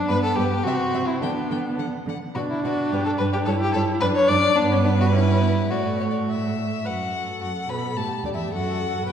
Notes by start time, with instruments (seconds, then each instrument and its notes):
Already playing: violin D4
0.09 cello G2, viola B3, violin B4
0.23 violin A4
0.36 cello G2, violin G4 B4
0.64 cello C3, viola C4, violin F#4 E5
0.93 cello C3, violin E5
1.07 violin E4
1.21 cello D3, viola B3, violin D4 G5
1.50 cello D3, violin G5
1.78 cello D3, violin F#5
2.06 cello D3, violin F#5
2.35 cello B2, viola D4, violin F#4 D5
2.51 violin E4
2.64 cello B2, violin F#4 D5
2.91 cello G2, violin G4 B4
3.05 violin A4
3.18 cello G2, violin B4
3.33 violin G4
3.46 cello G2, viola E4, violin A4 C#5
3.61 violin G4
3.73 cello G2, violin A4 C#5
4.01 cello F#2, viola D4, violin B4 D5
4.15 violin C#5
4.28 cello F#2, violin D5
4.56 cello G2, viola B3, violin D4 B4
4.72 violin C#4
4.85 violin D4
5.01 violin F#4
5.12 viola C#4, violin E4
5.41 viola B3
5.70 cello A2, viola A3, violin F#4 D5
6.00 violin C#5
6.11 violin D5
6.28 violin E5
6.84 cello F#2, violin F#4 F#5, viola B4
7.12 viola A4
7.41 cello F#2, violin F#4 F#5
7.67 cello B2, violin B4 B5
7.96 cello A2, viola G4, violin A4 A5
8.24 cello D2, violin D4 D5
8.33 cello E2, violin E4 E5
8.52 cello F#2, violin F#4 F#5, viola A4
9.07 cello B2, violin B4, viola B4